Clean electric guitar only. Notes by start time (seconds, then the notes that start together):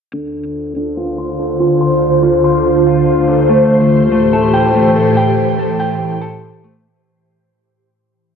0.13 D3
0.76 D3
0.97 F4
1.18 C6
1.39 D3
1.60 F4
1.81 C6
2.23 F4
2.44 C6
2.87 F4
3.28 D3
3.49 A3
4.12 A3
4.33 A4
4.54 G5
4.75 A3
4.96 A4
5.17 G5
5.59 A4
5.80 G5
6.22 A4
6.64 A3